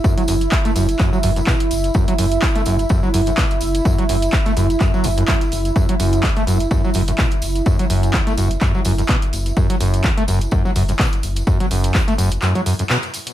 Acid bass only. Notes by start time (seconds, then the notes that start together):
0.04 F#2
0.17 F#3
0.28 F#2
0.65 A3
0.76 F#2
0.99 F#2
1.13 F#3
1.23 F#2
1.36 F#2
1.47 B2
1.95 F#2
2.08 F#3
2.19 F#2
2.55 A3
2.66 F#2
2.90 F#2
3.03 F#3
3.14 F#2
3.27 F#2
3.38 B2
3.85 F#2
3.98 F#3
4.09 F#2
4.46 A3
4.57 F#2
4.81 F#2
4.94 F#3
5.04 F#2
5.18 F#2
5.28 F#2
5.76 F#2
5.89 F#3
6.00 F#2
6.23 E2
6.37 A3
6.47 F#2
6.71 F#2
6.84 F#3
6.95 F#2
7.08 F#2
7.19 B2
7.66 F#2
7.79 F#3
7.90 F#2
8.14 E2
8.27 A3
8.38 F#2
8.61 F#2
8.75 F#3
8.85 F#2
8.98 F#2
9.09 B2
9.57 F#2
9.70 F#3
9.81 F#2
10.04 E2
10.17 A3
10.28 F#2
10.52 F#2
10.65 F#3
10.76 F#2
10.89 F#2
10.99 B2
11.47 F#2
11.60 F#3
11.71 F#2
11.95 E2
12.08 A3
12.18 F#2
12.42 F#2
12.55 F#3
12.66 F#2
12.79 F#2
12.90 B2